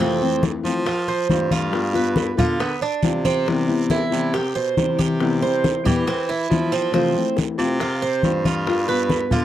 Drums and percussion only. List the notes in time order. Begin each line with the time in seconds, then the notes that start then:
0.00 high bongo, high conga, long guiro
0.21 high bongo, high conga
0.43 high bongo, high conga, short guiro
0.65 high bongo, high conga, short guiro
0.87 high bongo, high conga, long guiro
1.08 high conga
1.29 high bongo, low bongo, high conga, short guiro
1.51 high bongo, high conga, short guiro
1.73 high bongo, high conga, long guiro
1.95 high bongo, high conga
2.16 high bongo, high conga, short guiro
2.38 high bongo, high conga, low conga, short guiro
2.60 high bongo, high conga, long guiro
2.81 high conga
3.03 high bongo, low bongo, high conga, short guiro
3.25 high bongo, high conga, short guiro
3.46 high bongo, high conga, long guiro
3.69 high bongo, high conga
3.90 high bongo, high conga, short guiro
4.12 high bongo, high conga, short guiro
4.34 high bongo, high conga, long guiro
4.56 high conga
4.77 high bongo, low bongo, high conga, short guiro
4.99 high bongo, high conga, short guiro
5.20 high bongo, high conga, long guiro
5.42 high bongo, high conga
5.64 high bongo, high conga, short guiro
5.86 high bongo, high conga, low conga, short guiro
6.08 high bongo, high conga, long guiro
6.30 high conga
6.51 high bongo, low bongo, high conga, short guiro
6.72 high bongo, short guiro
6.94 high bongo, high conga, long guiro
7.16 high bongo, high conga
7.37 high bongo, high conga, short guiro
7.58 high bongo, high conga, short guiro
7.80 high bongo, high conga, long guiro
8.02 high conga
8.23 high bongo, low bongo, high conga, short guiro
8.45 high bongo, high conga, short guiro
8.67 high bongo, high conga, long guiro
8.88 high bongo, high conga
9.10 high bongo, high conga, short guiro
9.31 high bongo, high conga, low conga, short guiro